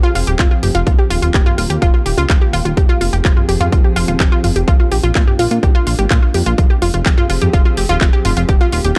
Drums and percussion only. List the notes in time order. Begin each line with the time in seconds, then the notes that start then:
0.15 open hi-hat
0.27 closed hi-hat
0.39 kick, clap, closed hi-hat
0.63 mid tom, open hi-hat
0.75 closed hi-hat
0.87 kick, closed hi-hat
1.11 open hi-hat
1.22 closed hi-hat
1.34 kick, clap, closed hi-hat
1.46 mid tom
1.58 open hi-hat
1.70 closed hi-hat
1.82 kick, closed hi-hat
2.06 open hi-hat
2.18 closed hi-hat
2.30 kick, clap, closed hi-hat
2.53 open hi-hat
2.65 closed hi-hat
2.77 kick, closed hi-hat
3.01 open hi-hat
3.13 closed hi-hat
3.25 kick, clap, closed hi-hat
3.37 mid tom
3.49 open hi-hat
3.61 closed hi-hat, mid tom
3.72 kick, closed hi-hat
3.96 open hi-hat
4.08 closed hi-hat
4.20 kick, clap, closed hi-hat
4.44 mid tom, open hi-hat
4.56 closed hi-hat
4.68 kick, closed hi-hat
4.92 open hi-hat
5.03 closed hi-hat
5.15 kick, clap, closed hi-hat
5.27 mid tom
5.39 open hi-hat
5.51 closed hi-hat
5.63 kick, closed hi-hat
5.87 open hi-hat
5.99 closed hi-hat
6.11 kick, clap, closed hi-hat
6.34 open hi-hat
6.46 closed hi-hat
6.58 kick, closed hi-hat
6.82 open hi-hat
6.94 closed hi-hat
7.06 kick, clap, closed hi-hat
7.18 mid tom
7.30 open hi-hat
7.42 closed hi-hat, mid tom
7.53 kick, closed hi-hat
7.77 open hi-hat
7.89 closed hi-hat
8.01 kick, clap, closed hi-hat
8.25 mid tom, open hi-hat
8.37 closed hi-hat
8.49 kick, closed hi-hat
8.72 open hi-hat
8.84 closed hi-hat